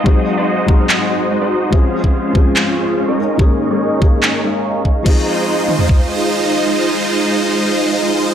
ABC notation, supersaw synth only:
X:1
M:4/4
L:1/16
Q:1/4=144
K:Ab
V:1 name="Supersaw synth"
[A,E_Gce]3 [A,EGce]3 [A,EGcf]2 [A,EGce]2 [A,EGce]2 [A,EGce] [A,EGce]3 | [A,DFcf]3 [A,DFcf]3 [A,DFca]2 [A,DFcf]2 [A,DFcf]2 [A,DFcf] [A,DEBe]3 | [A,DEBe]3 [A,DEBe]3 [A,DEBf]2 [A,DEBe]2 [A,DEBf]4 [A,DEBf]2 | [A,EFce]16- |
[A,EFce]16 |]